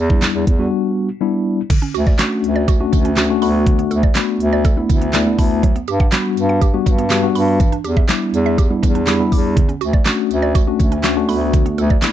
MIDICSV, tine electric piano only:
0, 0, Header, 1, 2, 480
1, 0, Start_track
1, 0, Key_signature, 2, "major"
1, 0, Tempo, 491803
1, 1659, Time_signature, 4, 2, 24, 8
1, 11833, End_track
2, 0, Start_track
2, 0, Title_t, "Tine electric piano"
2, 0, Program_c, 0, 4
2, 100, Note_on_c, 0, 55, 88
2, 101, Note_on_c, 0, 59, 81
2, 103, Note_on_c, 0, 62, 84
2, 104, Note_on_c, 0, 64, 97
2, 480, Note_off_c, 0, 55, 0
2, 480, Note_off_c, 0, 59, 0
2, 481, Note_off_c, 0, 62, 0
2, 482, Note_off_c, 0, 64, 0
2, 576, Note_on_c, 0, 55, 97
2, 579, Note_on_c, 0, 59, 84
2, 579, Note_on_c, 0, 62, 91
2, 581, Note_on_c, 0, 66, 100
2, 1053, Note_off_c, 0, 55, 0
2, 1055, Note_off_c, 0, 59, 0
2, 1055, Note_off_c, 0, 62, 0
2, 1056, Note_off_c, 0, 66, 0
2, 1179, Note_on_c, 0, 55, 98
2, 1180, Note_on_c, 0, 59, 89
2, 1183, Note_on_c, 0, 62, 96
2, 1184, Note_on_c, 0, 64, 111
2, 1560, Note_off_c, 0, 55, 0
2, 1560, Note_off_c, 0, 59, 0
2, 1561, Note_off_c, 0, 62, 0
2, 1562, Note_off_c, 0, 64, 0
2, 2136, Note_on_c, 0, 57, 86
2, 2137, Note_on_c, 0, 61, 71
2, 2139, Note_on_c, 0, 62, 76
2, 2140, Note_on_c, 0, 66, 89
2, 2613, Note_off_c, 0, 57, 0
2, 2614, Note_off_c, 0, 61, 0
2, 2615, Note_off_c, 0, 62, 0
2, 2615, Note_off_c, 0, 66, 0
2, 2736, Note_on_c, 0, 57, 102
2, 2737, Note_on_c, 0, 61, 93
2, 2739, Note_on_c, 0, 62, 94
2, 2739, Note_on_c, 0, 66, 111
2, 3023, Note_off_c, 0, 57, 0
2, 3024, Note_off_c, 0, 61, 0
2, 3024, Note_off_c, 0, 62, 0
2, 3025, Note_off_c, 0, 66, 0
2, 3095, Note_on_c, 0, 57, 89
2, 3096, Note_on_c, 0, 61, 86
2, 3098, Note_on_c, 0, 62, 84
2, 3100, Note_on_c, 0, 66, 103
2, 3192, Note_off_c, 0, 57, 0
2, 3193, Note_off_c, 0, 61, 0
2, 3194, Note_off_c, 0, 62, 0
2, 3195, Note_off_c, 0, 66, 0
2, 3217, Note_on_c, 0, 57, 92
2, 3220, Note_on_c, 0, 61, 87
2, 3222, Note_on_c, 0, 62, 83
2, 3223, Note_on_c, 0, 66, 102
2, 3325, Note_off_c, 0, 57, 0
2, 3329, Note_off_c, 0, 62, 0
2, 3330, Note_off_c, 0, 66, 0
2, 3337, Note_on_c, 0, 57, 93
2, 3339, Note_on_c, 0, 59, 81
2, 3340, Note_off_c, 0, 61, 0
2, 3341, Note_on_c, 0, 62, 83
2, 3342, Note_on_c, 0, 66, 100
2, 3914, Note_off_c, 0, 57, 0
2, 3915, Note_off_c, 0, 59, 0
2, 3916, Note_off_c, 0, 62, 0
2, 3916, Note_off_c, 0, 66, 0
2, 4057, Note_on_c, 0, 57, 83
2, 4059, Note_on_c, 0, 59, 75
2, 4060, Note_on_c, 0, 62, 77
2, 4062, Note_on_c, 0, 66, 91
2, 4534, Note_off_c, 0, 57, 0
2, 4535, Note_off_c, 0, 59, 0
2, 4535, Note_off_c, 0, 62, 0
2, 4536, Note_off_c, 0, 66, 0
2, 4654, Note_on_c, 0, 57, 105
2, 4655, Note_on_c, 0, 59, 90
2, 4657, Note_on_c, 0, 62, 87
2, 4660, Note_on_c, 0, 64, 107
2, 4942, Note_off_c, 0, 57, 0
2, 4942, Note_off_c, 0, 59, 0
2, 4943, Note_off_c, 0, 62, 0
2, 4945, Note_off_c, 0, 64, 0
2, 5018, Note_on_c, 0, 57, 92
2, 5018, Note_on_c, 0, 59, 86
2, 5019, Note_on_c, 0, 74, 77
2, 5021, Note_on_c, 0, 62, 83
2, 5023, Note_on_c, 0, 64, 103
2, 5114, Note_off_c, 0, 57, 0
2, 5114, Note_off_c, 0, 59, 0
2, 5115, Note_off_c, 0, 62, 0
2, 5116, Note_off_c, 0, 64, 0
2, 5136, Note_on_c, 0, 57, 89
2, 5138, Note_on_c, 0, 59, 85
2, 5139, Note_on_c, 0, 62, 81
2, 5141, Note_on_c, 0, 64, 99
2, 5242, Note_off_c, 0, 74, 0
2, 5257, Note_on_c, 0, 81, 69
2, 5481, Note_off_c, 0, 81, 0
2, 5498, Note_off_c, 0, 57, 0
2, 5498, Note_off_c, 0, 59, 0
2, 5499, Note_off_c, 0, 62, 0
2, 5500, Note_off_c, 0, 64, 0
2, 5974, Note_on_c, 0, 55, 81
2, 5975, Note_on_c, 0, 59, 73
2, 5977, Note_on_c, 0, 62, 74
2, 5978, Note_on_c, 0, 66, 91
2, 6452, Note_off_c, 0, 55, 0
2, 6453, Note_off_c, 0, 59, 0
2, 6454, Note_off_c, 0, 62, 0
2, 6454, Note_off_c, 0, 66, 0
2, 6574, Note_on_c, 0, 55, 102
2, 6576, Note_on_c, 0, 59, 91
2, 6577, Note_on_c, 0, 62, 89
2, 6580, Note_on_c, 0, 66, 111
2, 6862, Note_off_c, 0, 55, 0
2, 6863, Note_off_c, 0, 59, 0
2, 6864, Note_off_c, 0, 62, 0
2, 6865, Note_off_c, 0, 66, 0
2, 6932, Note_on_c, 0, 55, 92
2, 6934, Note_on_c, 0, 59, 85
2, 6934, Note_on_c, 0, 62, 84
2, 6938, Note_on_c, 0, 66, 106
2, 7030, Note_off_c, 0, 55, 0
2, 7031, Note_off_c, 0, 59, 0
2, 7031, Note_off_c, 0, 62, 0
2, 7033, Note_off_c, 0, 66, 0
2, 7052, Note_on_c, 0, 55, 92
2, 7054, Note_on_c, 0, 59, 87
2, 7055, Note_on_c, 0, 62, 85
2, 7057, Note_on_c, 0, 66, 104
2, 7415, Note_off_c, 0, 55, 0
2, 7417, Note_off_c, 0, 59, 0
2, 7417, Note_off_c, 0, 62, 0
2, 7418, Note_off_c, 0, 66, 0
2, 7894, Note_on_c, 0, 55, 81
2, 7894, Note_on_c, 0, 59, 76
2, 7896, Note_on_c, 0, 62, 75
2, 7899, Note_on_c, 0, 64, 89
2, 8372, Note_off_c, 0, 55, 0
2, 8372, Note_off_c, 0, 59, 0
2, 8373, Note_off_c, 0, 62, 0
2, 8375, Note_off_c, 0, 64, 0
2, 8494, Note_on_c, 0, 55, 102
2, 8495, Note_on_c, 0, 59, 94
2, 8498, Note_on_c, 0, 62, 92
2, 8499, Note_on_c, 0, 64, 107
2, 8782, Note_off_c, 0, 55, 0
2, 8782, Note_off_c, 0, 59, 0
2, 8784, Note_off_c, 0, 62, 0
2, 8784, Note_off_c, 0, 64, 0
2, 8856, Note_on_c, 0, 55, 94
2, 8857, Note_on_c, 0, 59, 86
2, 8857, Note_on_c, 0, 83, 76
2, 8859, Note_on_c, 0, 62, 85
2, 8860, Note_on_c, 0, 64, 101
2, 8952, Note_off_c, 0, 55, 0
2, 8953, Note_off_c, 0, 59, 0
2, 8954, Note_off_c, 0, 62, 0
2, 8955, Note_off_c, 0, 64, 0
2, 8976, Note_on_c, 0, 55, 88
2, 8978, Note_on_c, 0, 59, 86
2, 8981, Note_on_c, 0, 62, 85
2, 8982, Note_on_c, 0, 64, 101
2, 9305, Note_off_c, 0, 83, 0
2, 9337, Note_off_c, 0, 55, 0
2, 9338, Note_off_c, 0, 59, 0
2, 9340, Note_off_c, 0, 62, 0
2, 9340, Note_off_c, 0, 64, 0
2, 9815, Note_on_c, 0, 57, 83
2, 9816, Note_on_c, 0, 61, 73
2, 9817, Note_on_c, 0, 62, 76
2, 9821, Note_on_c, 0, 66, 92
2, 10293, Note_off_c, 0, 57, 0
2, 10293, Note_off_c, 0, 61, 0
2, 10294, Note_off_c, 0, 62, 0
2, 10296, Note_off_c, 0, 66, 0
2, 10415, Note_on_c, 0, 57, 97
2, 10417, Note_on_c, 0, 61, 91
2, 10419, Note_on_c, 0, 62, 96
2, 10421, Note_on_c, 0, 66, 108
2, 10703, Note_off_c, 0, 57, 0
2, 10704, Note_off_c, 0, 61, 0
2, 10704, Note_off_c, 0, 62, 0
2, 10705, Note_off_c, 0, 66, 0
2, 10775, Note_on_c, 0, 57, 94
2, 10777, Note_on_c, 0, 61, 86
2, 10778, Note_on_c, 0, 62, 82
2, 10780, Note_on_c, 0, 66, 103
2, 10872, Note_off_c, 0, 57, 0
2, 10873, Note_off_c, 0, 61, 0
2, 10874, Note_off_c, 0, 62, 0
2, 10875, Note_off_c, 0, 66, 0
2, 10896, Note_on_c, 0, 57, 96
2, 10898, Note_on_c, 0, 61, 86
2, 10899, Note_on_c, 0, 62, 84
2, 10900, Note_on_c, 0, 66, 98
2, 11004, Note_off_c, 0, 57, 0
2, 11007, Note_off_c, 0, 62, 0
2, 11008, Note_off_c, 0, 66, 0
2, 11016, Note_on_c, 0, 57, 91
2, 11017, Note_on_c, 0, 59, 81
2, 11018, Note_off_c, 0, 61, 0
2, 11018, Note_on_c, 0, 62, 83
2, 11020, Note_on_c, 0, 66, 99
2, 11593, Note_off_c, 0, 57, 0
2, 11594, Note_off_c, 0, 59, 0
2, 11595, Note_off_c, 0, 62, 0
2, 11595, Note_off_c, 0, 66, 0
2, 11734, Note_on_c, 0, 57, 83
2, 11735, Note_on_c, 0, 59, 76
2, 11737, Note_on_c, 0, 62, 73
2, 11739, Note_on_c, 0, 64, 91
2, 11833, Note_off_c, 0, 57, 0
2, 11833, Note_off_c, 0, 59, 0
2, 11833, Note_off_c, 0, 62, 0
2, 11833, Note_off_c, 0, 64, 0
2, 11833, End_track
0, 0, End_of_file